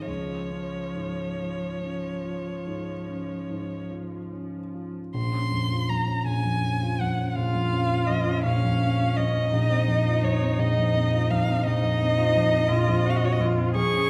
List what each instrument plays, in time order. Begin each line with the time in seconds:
Already playing: grand piano C4 D#4 G#4
0.07 grand piano C#2, cello F3, violin C#5
0.51 grand piano C#4
0.95 grand piano G#2
1.38 grand piano F4
1.82 grand piano C#4
2.24 grand piano F4
2.66 grand piano G#2
3.09 grand piano C#4
3.50 grand piano G#2
3.91 grand piano F4
4.32 grand piano C#4
4.74 grand piano F4
5.14 grand piano A#1, violin C6
5.32 grand piano C#4
5.51 grand piano F2
5.70 grand piano F4
5.89 grand piano F2, violin A#5
6.07 grand piano C#4
6.26 grand piano A#1, violin G#5
6.45 grand piano F2
6.64 grand piano C#4
6.82 grand piano F4
7.01 grand piano F2, violin F#5
7.18 grand piano C#4
7.29 violin F#5
7.35 grand piano A#1, cello F4, violin F5
7.55 grand piano F2
7.73 grand piano C#4
7.91 grand piano F4
8.06 grand piano F2, violin D#5
8.29 grand piano C#4
8.44 grand piano A#1, cello C#4, violin F5
8.64 grand piano F2
8.81 grand piano C#4
9.01 grand piano F4
9.17 grand piano F2, violin D#5
9.36 grand piano C#4
9.53 grand piano A#1, cello D#4
9.70 grand piano C4
9.88 grand piano F2
10.06 grand piano F4
10.23 grand piano F2, violin C#5
10.41 grand piano C4
10.59 grand piano A#1, violin D#5
10.77 grand piano F2
10.95 grand piano C4
11.13 grand piano F4
11.30 grand piano F2, violin F5
11.48 grand piano C4
11.66 grand piano A#1, cello D#4, violin D#5
11.83 grand piano F2
12.01 grand piano C4
12.18 grand piano F4
12.36 grand piano F2
12.53 grand piano C4
12.70 grand piano A#1, cello F4
12.88 grand piano F2
13.05 grand piano C4, cello F#4
13.10 violin F5
13.16 violin D#5
13.22 grand piano F4, violin C#5
13.32 violin D#5
13.40 grand piano F2, cello F4
13.58 grand piano C4
13.75 grand piano F2, cello G#4, violin C#6
13.93 grand piano C#4